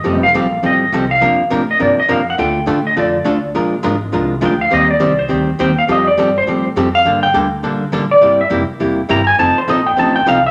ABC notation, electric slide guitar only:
X:1
M:4/4
L:1/8
Q:"Swing" 1/4=206
K:Bb
V:1 name="Electric slide guitar"
e f3 e3 f- | f2 z e d e f _g | g3 e d3 z | z6 g f |
e d2 c2 z g f | e d2 c2 z2 f- | f g z4 z d- | d =e z4 b _a |
a c e g a g f =e |]